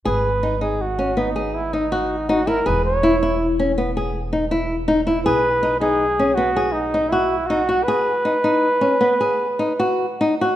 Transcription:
<<
  \new Staff \with { instrumentName = "Flugelhorn" } { \time 7/4 \key b \major \tempo 4 = 161 b'4. gis'8 fis'4 dis'4 e'8 dis'4. fis'8 ais'8 | b'8 cis''4. r1 r4 | b'4. gis'4. fis'4 dis'4 e'4 fis'4 | b'1. r4 | }
  \new Staff \with { instrumentName = "Nylon-string guitar" } { \time 7/4 \key b \major gis'4 dis'8 dis'4 cis'8 b8 gis'4 dis'8 fis'4 dis'8 e'8 | gis'4 e'8 e'4 cis'8 b8 gis'4 dis'8 e'4 dis'8 e'8 | gis'4 dis'8 dis'4 cis'8 b8 gis'4 dis'8 fis'4 dis'8 fis'8 | gis'4 dis'8 dis'4 cis'8 b8 gis'4 dis'8 fis'4 dis'8 fis'8 | }
  \new Staff \with { instrumentName = "Upright bass" } { \clef bass \time 7/4 \key b \major gis,,1.~ gis,,4 | e,,1.~ e,,4 | b,,1.~ b,,4 | r1. r4 | }
>>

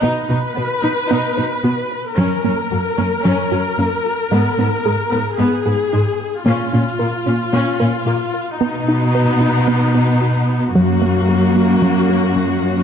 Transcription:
<<
  \new Staff \with { instrumentName = "Synth arpeggio sound" } { \time 4/4 \key ces \lydian \tempo 4 = 112 b8 dis'8 b'8 dis'8 b8 b'8 fis'8 r8 | ges8 bes8 ges'8 bes8 ges8 ges'8 des'8 r8 | aes8 ces'8 aes'8 ces'8 aes8 aes'8 ees'8 r8 | bes8 des'8 bes'8 des'8 bes8 bes'8 f'8 r8 |
b8 dis'8 b'8 dis'8 b8 b'8 fis'8 r8 | ges8 bes8 ges'8 bes8 ges8 ges'8 des'8 r8 | }
  \new Staff \with { instrumentName = "Viola section" } { \time 4/4 \key ces \lydian << { b'1 | bes'1~ | bes'2 aes'2 | f'1 |
dis'1 | ges'1 | } \\ { dis'8 dis'8 b8 dis'8 dis'8 dis'8 b8 r8 | des'8 des'8 bes8 des'8 des'8 des'8 bes8 r8 | ces'8 ces'8 aes8 ces'8 ces'8 ces'8 aes8 r8 | des'8 des'8 bes8 des'8 des'8 des'8 bes8 r8 |
b1 | bes1 | } >> }
  \new Staff \with { instrumentName = "Cello section" } { \clef bass \time 4/4 \key ces \lydian b,8 b,8 b,8 b,8 b,8 b,8 b,8 r8 | ges,8 ges,8 ges,8 ges,8 ges,8 ges,8 ges,8 r8 | aes,8 aes,8 aes,8 aes,8 aes,8 aes,8 aes,8 r8 | bes,8 bes,8 bes,8 bes,8 bes,8 bes,8 bes,8 r8 |
b,1 | ges,1 | }
>>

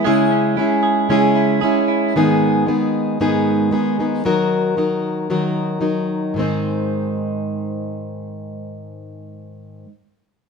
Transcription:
<<
  \new Staff \with { instrumentName = "Clean electric guitar" } { \time 4/4 \key dis \phrygian \tempo 4 = 114 <gis gis'>8 cis'8 e'8 gis'8 cis'8 e'8 gis'8 e'8 | r1 | r1 | r1 |
r1 | }
  \new Staff \with { instrumentName = "Steel-string acoustic guitar" } { \time 4/4 \key dis \phrygian <cis gis cis' e' gis'>4 <gis cis' e' gis'>4 <cis gis cis' e' gis'>4 <gis cis' e' gis'>4 | <gis, dis gis b dis' gis'>4 <gis b dis' gis'>4 <gis, dis gis b dis' gis'>4 <gis b dis' gis'>8 <gis b dis' gis'>8 | <dis fis dis' fis' ais'>4 <fis dis' fis' ais'>4 <dis fis dis' fis' ais'>4 <fis dis' fis' ais'>4 | <gis, dis gis bis dis' bis'>1~ |
<gis, dis gis bis dis' bis'>1 | }
>>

